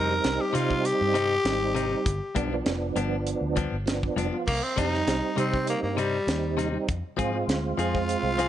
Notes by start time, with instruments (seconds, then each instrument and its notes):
Already playing: fingered electric bass F2, clean electric guitar C3 G3 C4 D#4, tenor saxophone A#4
0.10 tonewheel organ G3 C4 D#4
0.24 fingered electric bass C2, snare, closed hi-hat
0.41 tenor saxophone G4
0.53 clean electric guitar C3 G3 C4 D#4, fingered electric bass C3, tenor saxophone F4, closed hi-hat
0.71 kick
0.85 tenor saxophone G4, closed hi-hat
1.01 fingered electric bass G2
1.14 clean electric guitar C3 G3 C4 D#4, closed hi-hat
1.45 fingered electric bass G#1, tonewheel organ G3 C4 D#4, snare, closed hi-hat
1.75 clean electric guitar C3 G3 C4 D#4, closed hi-hat
1.91 tonewheel organ G3 C4 D#4
2.06 fingered electric bass G1, kick, closed hi-hat
2.35 fingered electric bass B1, clean electric guitar G2 F3 B3 D4, tonewheel organ F3 B3 D4, kick, closed hi-hat
2.53 tonewheel organ F3 B3 D4
2.66 fingered electric bass F1, snare, closed hi-hat
2.96 fingered electric bass G1, clean electric guitar G2 F3 B3 D4, closed hi-hat
3.27 closed hi-hat
3.41 fingered electric bass D2
3.56 clean electric guitar G2 F3 B3 D4, kick, closed hi-hat
3.72 fingered electric bass G1
3.86 tonewheel organ F3 B3 D4, snare, closed hi-hat
4.03 kick
4.16 fingered electric bass F1, clean electric guitar G2 F3 B3 D4, closed hi-hat
4.32 tonewheel organ F3 B3 F4
4.47 fingered electric bass C2, tenor saxophone A#3, kick, crash
4.63 tenor saxophone C4
4.76 fingered electric bass F2, clean electric guitar C3 G3 C4 D#4, tonewheel organ G3 C4 D#4, tenor saxophone D#4, kick, closed hi-hat
4.92 tonewheel organ G3 C4 D#4, snare
5.07 fingered electric bass C2, snare, closed hi-hat
5.36 clean electric guitar C3 G3 C4 D#4, fingered electric bass C3, tenor saxophone C4, closed hi-hat
5.54 kick, snare
5.67 tenor saxophone A#3, closed hi-hat
5.83 fingered electric bass G2, tenor saxophone A#3
5.97 clean electric guitar C3 G3 C4 D#4, tenor saxophone G3, closed hi-hat
6.27 fingered electric bass D#2, tonewheel organ G3 C4 D#4, snare, closed hi-hat
6.57 clean electric guitar C3 G3 C4 D#4, snare, closed hi-hat
6.72 tonewheel organ G3 C4 D#4
6.88 fingered electric bass F2, kick, closed hi-hat
7.17 fingered electric bass G#2, clean electric guitar F3 C4 F4 G#4, tonewheel organ G#3 C4 F4, kick, closed hi-hat
7.33 tonewheel organ G#3 C4 F4
7.48 fingered electric bass D2, snare, closed hi-hat
7.78 fingered electric bass F2, clean electric guitar F3 C4 F4 G#4, tenor saxophone F4, closed hi-hat
7.95 kick, snare
8.09 closed hi-hat
8.23 fingered electric bass C2
8.38 clean electric guitar F3 C4 F4 G#4, closed hi-hat